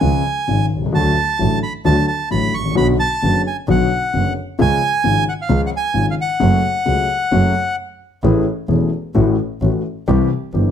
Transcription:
0.00 0.21 C#2 medium
0.00 0.21 C#3 medium
0.00 0.21 F3 medium
0.00 0.21 G#3 medium
0.00 0.21 F4 medium
0.00 0.66 G#5 medium
0.48 0.67 G#1 medium
0.48 0.67 G#2 soft
0.48 0.67 C#3 soft
0.48 0.67 F3 soft
0.48 0.68 G#3 soft
0.48 0.68 F4 soft
0.71 0.94 C2 soft
0.77 0.82 B1 soft
0.82 0.88 C2 soft
0.86 0.93 C#2 medium
0.92 1.12 D2 medium
0.92 1.13 D2 medium
0.92 1.13 D3 medium
0.92 1.12 F#3 medium
0.92 1.12 A3 medium
0.92 1.13 F#4 medium
0.92 1.59 A5 medium
1.39 1.59 A1 medium
1.39 1.59 A2 medium
1.39 1.59 D3 soft
1.39 1.59 F#3 soft
1.39 1.59 A3 soft
1.39 1.59 F#4 medium
1.63 1.73 B5 medium
1.84 2.04 D2 medium
1.84 2.05 D2 medium
1.84 2.04 D3 medium
1.84 2.04 F#3 medium
1.84 2.04 A3 medium
1.84 2.05 F#4 medium
1.84 2.06 A5 medium
2.07 2.29 A5 medium
2.30 2.50 A1 soft
2.30 2.50 A1 medium
2.30 2.50 A2 soft
2.30 2.50 D3 soft
2.30 2.50 F#3 soft
2.30 2.50 A3 soft
2.30 2.50 F#4 soft
2.30 2.55 B5 medium
2.54 2.76 A1 soft
2.54 2.75 C#6 medium
2.59 2.65 G#1 soft
2.65 2.71 A1 medium
2.71 2.77 A#1 medium
2.71 2.95 F#3 medium
2.75 2.95 B1 medium
2.75 2.96 B1 medium
2.75 2.95 B2 medium
2.75 2.95 D3 medium
2.75 2.95 B3 medium
2.75 2.95 F#4 medium
2.75 2.87 B5 medium
3.00 3.42 A5 medium
3.22 3.42 F#1 medium
3.22 3.42 F#1 soft
3.22 3.42 F#2 medium
3.22 3.41 D3 soft
3.22 3.42 F#3 soft
3.22 3.42 B3 soft
3.22 3.42 F#4 medium
3.47 3.57 G#5 medium
3.68 3.87 B1 medium
3.68 3.87 B2 medium
3.68 3.87 D3 medium
3.68 3.87 F#3 medium
3.68 3.87 B3 medium
3.68 3.87 F#4 medium
3.68 4.33 F#5 medium
4.13 4.33 F#1 soft
4.13 4.33 F#1 medium
4.13 4.32 F#2 medium
4.13 4.32 D3 soft
4.13 4.32 F#3 soft
4.13 4.32 B3 soft
4.13 4.32 F#4 soft
4.59 4.78 C#2 medium
4.59 4.78 C#3 medium
4.59 4.78 F3 medium
4.59 4.78 G#3 medium
4.59 4.78 F4 medium
4.59 5.24 G#5 loud
5.04 5.23 G#1 medium
5.04 5.23 G#2 medium
5.04 5.23 C#3 soft
5.04 5.23 F3 soft
5.04 5.24 G#3 soft
5.04 5.23 F4 soft
5.29 5.34 F#5 medium
5.42 5.61 F5 medium
5.49 5.69 C#2 medium
5.49 5.69 C#3 medium
5.49 5.69 F3 medium
5.49 5.69 G#3 medium
5.49 5.69 F4 medium
5.66 5.70 F#5 medium
5.76 6.06 G#5 medium
5.94 6.14 G#1 medium
5.94 6.13 G#2 soft
5.94 6.13 C#3 soft
5.94 6.13 F3 soft
5.94 6.13 G#3 soft
5.94 6.14 F4 soft
6.11 6.15 F5 medium
6.21 7.76 F#5 medium
6.40 6.60 F#1 medium
6.40 6.59 F#2 medium
6.40 6.59 C#3 medium
6.40 6.60 F#3 medium
6.40 6.60 A3 medium
6.40 6.60 F#4 medium
6.86 7.05 C#2 medium
6.86 7.05 C#3 medium
6.86 7.05 F#3 soft
6.86 7.05 A3 soft
6.86 7.06 F#4 soft
7.31 7.51 F#1 medium
7.31 7.51 F#2 medium
7.31 7.51 C#3 medium
7.31 7.51 F#3 medium
7.31 7.51 A3 medium
7.31 7.52 F#4 medium
8.23 8.43 A1 medium
8.23 8.43 A2 medium
8.23 8.43 E3 medium
8.23 8.43 A3 medium
8.23 8.43 C#4 medium
8.23 8.43 G#4 medium
8.68 8.88 E1 medium
8.68 8.89 E1 medium
8.68 8.89 E2 medium
8.68 8.88 E3 medium
8.68 8.88 A3 soft
8.68 8.89 C#4 soft
8.68 8.89 G#4 medium
9.15 9.35 A1 medium
9.15 9.35 A2 medium
9.15 9.34 E3 medium
9.15 9.34 A3 medium
9.15 9.34 C#4 medium
9.15 9.34 F#4 medium
9.61 9.81 A1 medium
9.61 9.81 A2 medium
9.61 9.81 E3 soft
9.61 9.81 A3 soft
9.61 9.81 C#4 soft
9.61 9.81 F#4 medium
10.08 10.27 C2 medium
10.08 10.27 C3 medium
10.08 10.27 E3 medium
10.08 10.27 G3 medium
10.08 10.27 C4 medium
10.08 10.27 G4 medium
10.53 10.71 G1 medium
10.53 10.71 G2 medium
10.53 10.71 E3 medium
10.53 10.71 G3 soft
10.53 10.71 C4 soft
10.53 10.71 G4 medium

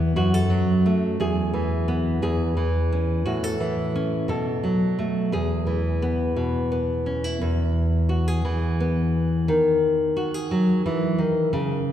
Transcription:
0.00 0.16 E2 medium
0.00 0.18 E3 medium
0.00 0.14 B3 medium
0.00 0.16 G#4 medium
0.16 1.16 F#2 medium
0.16 0.34 F#4 medium
0.34 1.20 A4 medium
0.50 1.16 F#3 medium
0.86 1.21 A3 medium
1.20 2.21 E2 medium
1.20 2.19 G#4 medium
1.54 2.55 E3 medium
1.88 2.19 B3 medium
2.22 3.26 E2 medium
2.22 3.22 G#4 medium
2.57 3.59 E3 medium
2.92 3.23 C#4 medium
3.26 4.25 A2 medium
3.26 3.44 F#4 medium
3.44 4.28 A4 medium
3.60 4.29 E3 medium
3.96 4.26 C#4 medium
4.28 5.32 B2 medium
4.28 5.28 A4 medium
4.64 5.28 F#3 medium
4.99 5.33 A3 soft
5.32 7.40 E2 medium
5.32 7.36 G#4 medium
5.67 8.43 E3 medium
6.02 6.70 B3 medium
6.36 7.40 B2 medium
6.72 7.36 B3 medium
7.06 7.24 C#4 soft
7.24 7.41 E4 soft
7.41 9.48 E2 medium
8.09 8.28 F#4 medium
8.28 9.48 G#4 soft
8.45 9.48 E3 medium
8.80 9.44 B3 medium
9.48 11.17 D#3 medium
10.17 10.34 F#4 medium
10.34 11.54 G#4 soft
10.51 10.85 F#3 medium
10.86 11.19 E3 medium
11.18 11.52 D#3 medium
11.53 11.92 C#3 medium

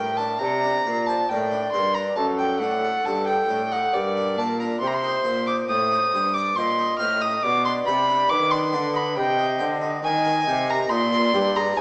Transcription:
0.00 0.36 A2 medium
0.00 0.39 A2 medium
0.00 0.18 A#4 soft
0.00 0.43 A#4 medium
0.00 0.19 G5 medium
0.17 0.41 D4 soft
0.17 0.40 A5 medium
0.39 0.81 C3 medium
0.39 0.84 C3 medium
0.39 1.30 D5 medium
0.39 1.08 A#5 medium
0.64 0.86 D4 soft
0.85 1.28 A#2 medium
0.85 1.26 A#2 medium
0.85 1.09 A#4 soft
1.07 1.30 C5 soft
1.07 1.31 A5 medium
1.29 1.72 A2 medium
1.29 1.70 A2 medium
1.29 1.53 A#4 soft
1.29 2.19 D5 medium
1.29 1.72 G5 medium
1.52 1.74 D4 soft
1.72 2.16 G2 medium
1.72 2.13 G2 medium
1.72 1.96 A#4 medium
1.72 1.96 C6 medium
1.95 2.17 D4 soft
1.95 2.16 A#5 medium
2.16 2.56 F#2 medium
2.16 2.62 F#2 medium
2.16 3.95 A4 medium
2.16 2.24 A5 medium
2.38 2.62 A4 soft
2.38 2.60 G5 medium
2.60 3.04 A2 medium
2.60 3.01 A2 medium
2.60 2.84 D4 medium
2.60 3.07 F#5 medium
2.85 3.06 A4 soft
3.04 3.47 G2 medium
3.04 3.45 G2 medium
3.04 3.28 D4 soft
3.04 3.26 A5 medium
3.27 3.50 A4 soft
3.27 3.73 G5 medium
3.48 3.91 A2 medium
3.48 3.89 A2 medium
3.48 3.72 D4 soft
3.72 3.93 D#4 soft
3.72 3.95 F#5 medium
3.92 4.38 G2 medium
3.92 4.33 G2 medium
3.92 4.81 A#4 medium
3.92 4.40 D5 medium
4.17 4.39 D4 soft
4.36 4.80 A#2 medium
4.36 4.78 A#2 medium
4.36 4.61 A#4 medium
4.36 4.61 A5 medium
4.60 4.82 D4 soft
4.60 4.79 A#5 medium
4.80 5.23 C3 medium
4.80 5.22 C3 medium
4.80 6.26 C5 medium
4.80 4.89 C6 medium
4.87 4.96 A#5 medium
4.94 5.46 C6 medium
5.04 5.26 D#4 soft
5.25 5.68 A#2 medium
5.25 5.65 A#2 medium
5.25 5.48 C5 medium
5.47 5.70 D#4 soft
5.47 5.55 D6 medium
5.68 6.11 A2 medium
5.68 6.08 A2 medium
5.68 6.35 D#6 loud
5.91 6.14 D#4 soft
6.13 6.55 G2 medium
6.13 6.53 G2 medium
6.13 6.37 C5 medium
6.34 6.57 D5 soft
6.34 6.58 D6 medium
6.56 6.99 A#2 medium
6.56 6.96 A#2 medium
6.56 6.79 C5 medium
6.56 7.45 D#5 medium
6.56 6.99 C6 loud
6.79 7.01 D#4 soft
6.99 7.42 A2 medium
6.99 7.39 A2 medium
6.99 7.23 C5 medium
6.99 7.23 F6 medium
7.20 7.43 D#4 medium
7.20 7.44 D#6 medium
7.43 7.83 B2 medium
7.43 7.86 B2 medium
7.43 8.32 D5 medium
7.43 7.65 D6 loud
7.65 7.88 D4 medium
7.65 7.73 C6 medium
7.86 8.27 C3 medium
7.86 8.30 C3 medium
7.86 8.10 D5 medium
7.86 8.31 B5 loud
8.09 8.32 D4 soft
8.30 8.70 D#3 medium
8.30 8.75 D#3 medium
8.30 9.19 B4 medium
8.30 8.53 D6 loud
8.51 8.75 D4 soft
8.51 8.98 C6 loud
8.73 9.13 D3 medium
8.73 9.18 D3 medium
8.73 8.96 D5 medium
8.94 9.16 D#5 soft
8.94 9.18 B5 medium
9.17 9.62 C3 medium
9.17 9.56 C3 medium
9.17 10.04 D#5 medium
9.17 9.60 G5 medium
9.39 9.62 D#4 medium
9.59 9.99 D3 medium
9.59 10.04 D3 medium
9.59 9.83 C5 medium
9.82 10.04 D#4 medium
10.03 10.43 D#3 medium
10.03 10.47 D#3 medium
10.03 10.93 D#5 medium
10.03 10.71 G#5 loud
10.25 10.48 A#4 medium
10.47 10.89 C3 medium
10.47 10.87 C3 medium
10.47 10.70 G4 medium
10.68 10.91 A#4 medium
10.68 10.91 A#5 medium
10.89 11.29 A#2 medium
10.89 11.34 A#2 medium
10.89 11.13 D#4 medium
10.89 11.77 D5 medium
10.89 11.58 C6 loud
11.12 11.35 A#4 medium
11.33 11.77 G2 medium
11.33 11.73 G2 medium
11.33 11.57 G4 medium
11.56 11.77 G#4 soft
11.56 11.78 A#5 loud
11.77 11.81 G#2 medium
11.77 11.81 C5 medium
11.77 11.81 G#5 loud

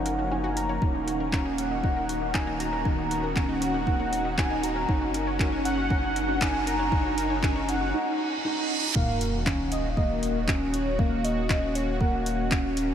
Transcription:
0.00 0.79 F#1 medium
0.00 0.80 F3 medium
0.00 7.90 A#3 medium
0.00 4.85 C#4 medium
0.00 0.20 D#4 medium
0.00 0.33 F#5 medium
0.00 riser medium
0.06 0.11 A#4 medium
0.06 closed hi-hat medium
0.19 0.27 F#4 medium
0.31 0.36 C#4 medium
0.31 0.71 D#4 medium
0.31 0.59 G#5 medium
0.44 0.56 F#4 medium
0.57 0.65 A#4 medium
0.57 0.82 A#5 loud
0.57 closed hi-hat medium
0.69 0.77 C#5 medium
0.82 4.86 D#1 medium
0.82 4.85 D#3 medium
0.82 0.94 C#4 medium
0.82 1.22 D#4 medium
0.82 7.90 F#4 medium
0.82 kick loud
0.95 1.03 D#4 medium
1.07 1.12 F#4 medium
1.07 closed hi-hat medium
1.20 1.28 A#4 medium
1.33 1.72 C#4 medium
1.33 1.45 F#4 medium
1.33 kick medium
1.33 clap medium
1.45 1.58 D#4 medium
1.58 1.66 C#4 medium
1.58 2.35 F#5 medium
1.58 closed hi-hat medium
1.71 1.79 D#4 medium
1.83 2.23 D#4 medium
1.83 1.89 F#4 medium
1.83 kick medium
1.96 2.04 A#4 medium
2.09 2.14 F#4 medium
2.09 closed hi-hat medium
2.22 2.30 D#4 medium
2.34 2.39 C#4 medium
2.34 2.74 D#4 medium
2.34 2.61 G#5 medium
2.34 kick medium
2.34 clap medium
2.47 2.59 D#4 loud
2.60 2.68 F#4 medium
2.60 2.85 A#5 loud
2.60 closed hi-hat medium
2.73 2.81 A#4 medium
2.85 2.97 C#4 medium
2.85 3.25 D#4 medium
2.85 kick medium
2.98 3.06 D#4 medium
3.11 3.16 F#4 medium
3.11 closed hi-hat medium
3.23 3.31 A#4 medium
3.36 3.76 C#4 medium
3.36 3.48 F#4 medium
3.36 kick medium
3.36 clap medium
3.49 3.61 D#4 medium
3.61 3.70 C#4 medium
3.61 4.40 F#5 medium
3.61 closed hi-hat medium
3.74 3.82 D#4 medium
3.87 4.27 D#4 medium
3.87 3.92 F#4 medium
3.87 kick loud
4.00 4.08 A#4 medium
4.13 4.17 F#4 medium
4.13 closed hi-hat medium
4.25 4.33 D#4 medium
4.38 4.43 C#4 medium
4.38 4.77 D#4 medium
4.38 4.66 G#5 medium
4.38 kick loud
4.38 clap medium
4.50 4.63 D#4 loud
4.63 4.71 F#4 medium
4.63 4.89 A#5 loud
4.63 closed hi-hat medium
4.76 4.84 A#4 medium
4.89 7.94 F#1 medium
4.89 5.01 C#4 medium
4.89 6.90 C#4 medium
4.89 5.28 D#4 medium
4.89 kick loud
5.01 5.09 F#4 medium
5.14 5.19 A#4 medium
5.14 closed hi-hat medium
5.27 5.35 C#5 medium
5.39 5.79 C#4 medium
5.39 5.52 A#4 medium
5.39 kick loud
5.39 clap medium
5.52 5.64 F#4 loud
5.65 5.73 C#4 medium
5.65 6.43 F#5 loud
5.65 closed hi-hat medium
5.77 5.86 F#4 medium
5.90 6.30 D#4 medium
5.90 5.95 A#4 medium
5.90 kick loud
6.03 6.11 C#5 medium
6.16 6.21 A#4 medium
6.16 closed hi-hat medium
6.28 6.37 F#4 medium
6.41 6.46 C#4 medium
6.41 6.81 D#4 medium
6.41 6.68 G#5 loud
6.41 kick medium
6.41 clap loud
6.54 6.66 F#4 loud
6.67 6.75 A#4 medium
6.67 6.92 A#5 loud
6.67 closed hi-hat medium
6.79 6.87 C#5 medium
6.92 7.04 C#4 medium
6.92 7.32 D#4 medium
6.92 7.93 D#4 medium
6.92 kick loud
7.05 7.13 F#4 medium
7.17 7.22 A#4 medium
7.17 closed hi-hat medium
7.30 7.38 C#5 medium
7.43 7.82 C#4 medium
7.43 7.55 A#4 medium
7.43 kick loud
7.43 clap medium
7.56 7.68 F#4 loud
7.68 7.76 C#4 medium
7.68 7.92 F#5 medium
7.68 closed hi-hat medium
7.81 7.89 F#4 medium
7.94 8.33 D#4 medium
7.94 reverse cymbal medium
8.45 8.84 D#4 medium
8.95 12.94 D#1 medium
8.95 12.94 D#3 medium
8.95 9.35 A#3 medium
8.95 12.94 A#3 medium
8.95 12.94 C#4 medium
8.95 12.94 F#4 medium
8.95 9.43 F5 loud
8.95 kick loud
8.95 sub drop medium
9.21 closed hi-hat medium
9.46 9.86 C#4 medium
9.46 kick loud
9.46 clap loud
9.72 9.89 D#5 loud
9.72 closed hi-hat medium
9.90 9.99 F5 medium
9.97 10.37 A#3 medium
9.97 10.48 D#5 loud
9.97 kick loud
10.23 closed hi-hat medium
10.48 10.87 C#4 medium
10.48 kick loud
10.48 clap loud
10.74 11.01 C#5 medium
10.74 closed hi-hat medium
10.99 11.38 A#3 medium
10.99 11.26 F5 loud
10.99 kick loud
11.24 11.77 D#5 loud
11.24 closed hi-hat medium
11.50 11.89 C#4 medium
11.50 kick loud
11.50 clap medium
11.75 12.00 C#5 loud
11.75 closed hi-hat medium
12.00 12.40 A#3 medium
12.00 12.73 F#5 loud
12.00 kick loud
12.26 closed hi-hat medium
12.51 12.91 C#4 medium
12.51 kick loud
12.51 clap loud
12.77 closed hi-hat medium

